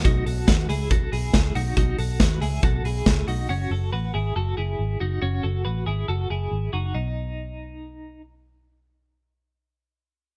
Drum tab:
HH |xoxoxoxo|xoxoxoxo|--------|--------|
SD |--o---o-|--o---o-|--------|--------|
BD |o-o-o-o-|o-o-o-o-|--------|--------|

HH |--------|--------|
SD |--------|--------|
BD |--------|--------|